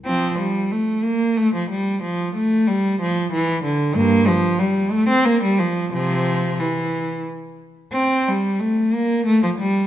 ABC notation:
X:1
M:3/4
L:1/16
Q:1/4=91
K:F
V:1 name="Cello" clef=bass
[F,C]2 G,2 A,2 B,2 A, F, G,2 | F,2 A,2 G,2 F,2 E,2 D,2 | [G,,B,]2 F,2 G,2 A, C B, G, F,2 | [C,F,]4 E,4 z4 |
C2 G,2 A,2 B,2 A, F, G,2 |]